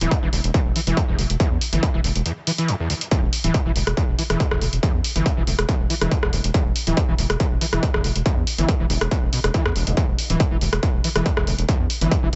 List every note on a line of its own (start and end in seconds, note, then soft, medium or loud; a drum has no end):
0.01 0.08 D1 medium
0.01 0.13 E3 medium
0.01 closed hi-hat medium
0.11 0.18 E2 medium
0.11 kick loud
0.11 closed hi-hat medium
0.23 0.29 E1 medium
0.23 0.28 E3 medium
0.33 0.40 E1 medium
0.33 0.37 D2 medium
0.33 open hi-hat loud
0.44 0.51 E1 medium
0.44 closed hi-hat medium
0.54 0.61 E2 medium
0.54 kick loud
0.54 closed hi-hat medium
0.66 0.72 E1 medium
0.76 0.79 E3 loud
0.76 open hi-hat medium
0.87 0.94 E1 medium
0.87 0.99 E3 medium
0.87 closed hi-hat medium
0.97 1.03 E2 medium
0.97 kick loud
0.97 closed hi-hat medium
1.08 1.15 E1 medium
1.08 1.17 E2 medium
1.18 1.26 E1 medium
1.18 1.22 D2 medium
1.18 open hi-hat loud
1.30 1.37 E1 medium
1.30 closed hi-hat medium
1.40 1.49 E2 medium
1.40 kick loud
1.40 closed hi-hat medium
1.51 1.58 E2 medium
1.61 open hi-hat loud
1.73 1.79 G1 medium
1.73 1.84 E3 medium
1.73 closed hi-hat medium
1.83 1.89 E2 medium
1.83 kick loud
1.83 closed hi-hat medium
1.94 2.01 E1 medium
1.94 2.00 E3 medium
2.04 2.12 E1 medium
2.04 2.08 D2 medium
2.04 open hi-hat loud
2.16 2.22 E1 medium
2.16 closed hi-hat medium
2.26 2.32 E2 medium
2.26 closed hi-hat medium
2.47 2.51 E3 medium
2.47 open hi-hat loud
2.58 2.70 E3 medium
2.58 closed hi-hat medium
2.68 2.75 E2 medium
2.68 closed hi-hat medium
2.80 2.88 E2 medium
2.90 2.94 D2 medium
2.90 open hi-hat loud
3.01 closed hi-hat medium
3.11 3.21 E2 medium
3.11 kick loud
3.11 closed hi-hat medium
3.23 3.29 E1 medium
3.33 open hi-hat loud
3.44 3.51 D1 medium
3.44 3.56 E3 medium
3.44 closed hi-hat medium
3.54 3.61 E2 medium
3.54 kick loud
3.54 closed hi-hat medium
3.66 3.72 E1 medium
3.66 3.71 E3 medium
3.76 3.83 E1 loud
3.76 3.79 D2 medium
3.76 open hi-hat loud
3.87 3.94 E1 medium
3.87 cross-stick medium
3.87 closed hi-hat medium
3.97 4.03 E2 medium
3.97 kick loud
3.97 closed hi-hat medium
4.08 4.15 E1 medium
4.19 4.22 E3 loud
4.19 open hi-hat loud
4.30 4.37 E1 medium
4.30 4.42 E3 medium
4.30 cross-stick medium
4.30 closed hi-hat medium
4.40 4.46 E2 medium
4.40 kick loud
4.40 closed hi-hat medium
4.51 4.58 E1 medium
4.51 4.60 E2 medium
4.51 cross-stick medium
4.61 4.69 E1 loud
4.61 4.65 D2 medium
4.61 open hi-hat loud
4.73 4.79 E1 medium
4.73 closed hi-hat medium
4.83 4.92 E2 medium
4.83 kick loud
4.83 closed hi-hat medium
4.94 5.01 E2 medium
5.04 open hi-hat loud
5.16 5.22 G1 medium
5.16 5.27 E3 medium
5.16 closed hi-hat medium
5.26 5.32 E2 medium
5.26 kick loud
5.26 closed hi-hat medium
5.37 5.44 E1 medium
5.37 5.43 E3 medium
5.47 5.55 E1 loud
5.47 5.51 D2 medium
5.47 open hi-hat loud
5.59 5.65 E1 medium
5.59 cross-stick medium
5.59 closed hi-hat medium
5.69 5.75 E2 medium
5.69 kick loud
5.69 closed hi-hat medium
5.80 5.87 E1 medium
5.90 5.94 E3 loud
5.90 open hi-hat loud
6.01 6.08 E1 medium
6.01 6.13 E3 medium
6.01 cross-stick medium
6.01 closed hi-hat medium
6.11 6.18 E2 medium
6.11 kick loud
6.11 closed hi-hat medium
6.23 6.29 E1 medium
6.23 6.31 E2 medium
6.23 cross-stick medium
6.33 6.40 E1 medium
6.33 6.37 D2 medium
6.33 open hi-hat loud
6.44 6.51 E1 medium
6.44 closed hi-hat medium
6.54 6.64 E2 medium
6.54 kick loud
6.54 closed hi-hat medium
6.66 6.72 E1 medium
6.76 open hi-hat loud
6.87 6.94 D1 medium
6.87 6.99 E3 medium
6.87 closed hi-hat medium
6.97 7.03 E2 medium
6.97 kick loud
6.97 closed hi-hat medium
7.08 7.15 E1 medium
7.08 7.14 E3 medium
7.18 7.26 E1 loud
7.18 7.22 D2 medium
7.18 open hi-hat loud
7.30 7.37 E1 medium
7.30 cross-stick medium
7.30 closed hi-hat medium
7.40 7.46 E2 medium
7.40 kick loud
7.40 closed hi-hat medium
7.51 7.58 E1 medium
7.61 7.65 E3 loud
7.61 open hi-hat loud
7.73 7.79 E1 medium
7.73 7.84 E3 medium
7.73 cross-stick medium
7.73 closed hi-hat medium
7.83 7.89 E2 medium
7.83 kick loud
7.83 closed hi-hat medium
7.94 8.01 E1 medium
7.94 8.03 E2 medium
7.94 cross-stick medium
8.04 8.12 E1 loud
8.04 8.08 D2 medium
8.04 open hi-hat loud
8.16 8.22 E1 medium
8.16 closed hi-hat medium
8.26 8.35 E2 medium
8.26 kick loud
8.26 closed hi-hat medium
8.37 8.44 E2 medium
8.47 open hi-hat loud
8.58 8.65 G1 medium
8.58 8.70 E3 medium
8.58 closed hi-hat medium
8.69 8.75 E2 medium
8.69 kick loud
8.69 closed hi-hat medium
8.80 8.87 E1 medium
8.80 8.85 E3 medium
8.90 8.97 E1 medium
8.90 8.94 D2 medium
8.90 open hi-hat loud
9.01 9.08 E1 medium
9.01 cross-stick loud
9.01 closed hi-hat medium
9.11 9.18 E2 medium
9.11 kick loud
9.11 closed hi-hat medium
9.23 9.29 E1 medium
9.33 9.39 B2 medium
9.33 open hi-hat loud
9.44 9.47 E1 medium
9.44 9.51 E1 medium
9.44 cross-stick medium
9.44 closed hi-hat medium
9.54 9.64 E3 medium
9.54 kick loud
9.54 closed hi-hat medium
9.65 9.72 E2 medium
9.65 9.69 G2 medium
9.65 cross-stick loud
9.76 9.88 E1 loud
9.76 9.83 E1 loud
9.76 open hi-hat loud
9.87 9.94 E1 medium
9.87 9.95 E2 medium
9.87 closed hi-hat medium
9.97 10.06 E2 medium
9.97 kick loud
9.97 closed hi-hat medium
10.09 10.15 E1 medium
10.19 open hi-hat loud
10.30 10.37 D1 medium
10.30 10.41 E3 medium
10.30 closed hi-hat medium
10.40 10.46 E2 medium
10.40 kick loud
10.40 closed hi-hat medium
10.51 10.58 E1 medium
10.51 10.57 E3 medium
10.61 10.69 E1 loud
10.61 10.65 D2 medium
10.61 open hi-hat loud
10.73 10.79 E1 medium
10.73 cross-stick medium
10.73 closed hi-hat medium
10.83 10.89 E2 medium
10.83 kick loud
10.83 closed hi-hat medium
10.94 11.01 E1 medium
11.04 11.08 E3 loud
11.04 open hi-hat loud
11.16 11.22 E1 medium
11.16 11.27 E3 medium
11.16 cross-stick medium
11.16 closed hi-hat medium
11.26 11.32 E2 medium
11.26 kick loud
11.26 closed hi-hat medium
11.37 11.44 E1 medium
11.37 11.45 E2 medium
11.37 cross-stick medium
11.47 11.55 E1 medium
11.47 11.51 D2 medium
11.47 open hi-hat loud
11.58 11.65 E1 medium
11.58 closed hi-hat medium
11.69 11.78 E2 medium
11.69 kick loud
11.69 closed hi-hat medium
11.80 11.87 E2 medium
11.90 open hi-hat loud
12.01 12.08 G1 medium
12.01 12.13 E3 medium
12.01 closed hi-hat medium
12.11 12.18 E2 medium
12.11 kick loud
12.11 closed hi-hat medium
12.23 12.29 E1 medium
12.23 12.28 E3 medium